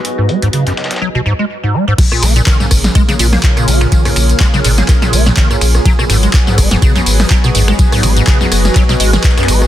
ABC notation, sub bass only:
X:1
M:4/4
L:1/8
Q:"Swing 16ths" 1/4=124
K:Bbphr
V:1 name="Sub bass" clef=bass
z8 | z B,,, z A,,, z B,,, z B,,, | z B,,, z A,,, z B,,, z B,,, | z A,,, z G,,, z A,,, z A,,, |
z A,,, z G,,, z A,,, z A,,, |]